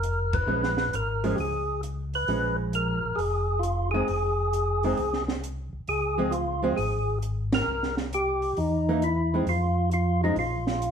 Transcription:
Already playing: F1 A#4
0.03 closed hi-hat
0.33 B4, kick, ride
0.47 A#1 F3 G#3 C#4
0.63 snare
0.77 snare
0.93 G#1 A#4, closed hi-hat
1.24 F3 G#3 C#4, open hi-hat
1.35 C#2 G4, open hi-hat
1.40 G#4
1.83 closed hi-hat
2.14 B4, open hi-hat
2.27 A#1 F3 G#3 C#4, open hi-hat
2.73 A#4, closed hi-hat
3.04 A#1
3.16 F1 G#4, open hi-hat
3.59 F4, closed hi-hat
3.91 D#3 G#3 G#4
3.95 C4
4.08 F1, open hi-hat
4.53 closed hi-hat
4.83 D#3 G#3 C4, open hi-hat
4.97 C2, open hi-hat
5.13 snare
5.28 snare
5.44 closed hi-hat
5.73 C2
5.87 C#2 G#4, open hi-hat
6.18 F3 G#3 C4
6.31 F4, closed hi-hat
6.63 F3 G#3 C4
6.76 G#1 G#4, open hi-hat
7.22 closed hi-hat
7.52 A#4, snare, ride
7.68 C2
7.83 snare
7.97 snare
8.13 G4, closed hi-hat
8.42 open hi-hat
8.57 E2 D#4, open hi-hat
8.89 E3 A#3 D#4
9.02 E4, closed hi-hat
9.34 D#3 G#3 C4
9.46 F2 F4, open hi-hat
9.91 F4, closed hi-hat
10.24 F3 G#3 C#4 D#4
10.35 A#1 F4, open hi-hat
10.67 snare
10.82 closed hi-hat

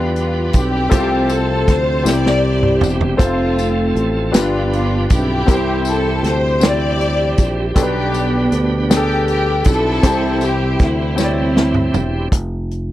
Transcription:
Already playing: E2 D3 G3 B3 D4 F4 G4 B4
0.16 F4, closed hi-hat
0.53 B1 C4 G4, kick, closed hi-hat, tambourine
0.90 C2 C3 F3 A3 C4 F4 A4 C5, kick, closed hi-hat, tambourine
1.30 A4, closed hi-hat, tambourine
1.68 D2 C5, kick, snare, closed hi-hat
2.03 C2 C3 E3 C4 E4 G4 C5, snare, tambourine
2.07 G3 C4 G4 D5
2.26 snare
2.63 mid tom
2.81 E1, floor tom, tambourine
3.01 floor tom
3.17 F1 F3 A3 C4 F4 A4 C5, kick, closed hi-hat, tambourine
3.23 A3 C4 F4
3.58 closed hi-hat, tambourine
3.95 A1, closed hi-hat
4.32 G1 G2 F3 D4 F4 G4 B4, snare, closed hi-hat, tambourine
4.36 B3 D4 F4
4.73 F4, closed hi-hat
5.10 B1 C4 E4 G4, kick, closed hi-hat, tambourine
5.46 C2 C3 E3 G3 C4 E4 F#4 G4 A#4, kick, closed hi-hat, tambourine
5.54 G4 C5
5.85 closed hi-hat, tambourine
5.90 A4
6.23 D2, snare, closed hi-hat
6.28 C5
6.60 C4 E4 G4 C5, snare, closed hi-hat, tambourine
6.64 G4 D5
6.69 D5
7.01 closed hi-hat
7.38 A#1, kick, closed hi-hat, tambourine
7.74 B1 B2 D3 G3 B3 D4 F4 G4 A4 B4, kick, closed hi-hat, tambourine
7.79 B3 D4 G4 B4
8.14 closed hi-hat, tambourine
8.52 D2, closed hi-hat
8.89 B3 D4 G4 G#4, snare, closed hi-hat, tambourine
8.97 A4
9.28 G4, closed hi-hat
9.64 B1 A4, kick, closed hi-hat, tambourine
9.69 C4 E4
10.03 C2 C3 E3 G3 C4 E4 G4 C5, kick, closed hi-hat, tambourine
10.41 G4, closed hi-hat, tambourine
10.79 D2 E4, kick, snare, closed hi-hat
11.16 C4 E4 G4 C#5, snare, tambourine
11.21 G3 C4 E4 D5
11.57 snare
11.74 mid tom
11.94 E1, floor tom, tambourine
12.32 F1, kick, closed hi-hat
12.71 closed hi-hat

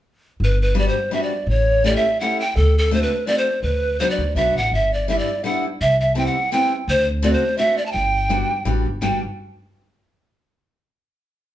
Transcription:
0.40 G1
0.44 B4
0.62 B4
0.75 G3 B3 D4 F#4 D5
0.88 C5
1.11 G3 B3 D4 F#4 E5
1.23 D5
1.47 A1 C#5
1.84 A3 C#4 E4 G4 D5
1.96 E5
2.20 A3 C#4 E4 G4 F#5
2.40 G5
2.56 D2 A4
2.79 A4
2.91 A3 C4 D4 F#4 C5
3.03 B4
3.27 A3 C4 D4 F#4 D5
3.38 C5
3.63 D2 B4
4.00 F#3 B3 D4 F#4 C5
4.10 D5
4.18 D2
4.35 B1 F#3 B3 D4 F#4 E5
4.56 A1 F#5
4.71 G1 E5
4.94 D5
5.08 G3 B3 D4 E4 E5
5.19 D5
5.44 G3 B3 D4 E4 F#5
5.81 C2 E5
6.01 E5
6.15 G3 B3 C4 E4 G5 A5
6.26 F#5
6.52 G3 B3 C4 E4 G5
6.88 D2 C5
7.22 A3 C4 D4 F#4 D5
7.33 C5
7.58 A3 C4 D4 F#4 E5
7.78 D5
7.86 A5
7.92 G1 G5
8.29 G3 B3 D4 F#4
8.65 A1 G3 B3 D4 F#4
8.86 G1
9.02 G1 G3 B3 D4 F#4 G5

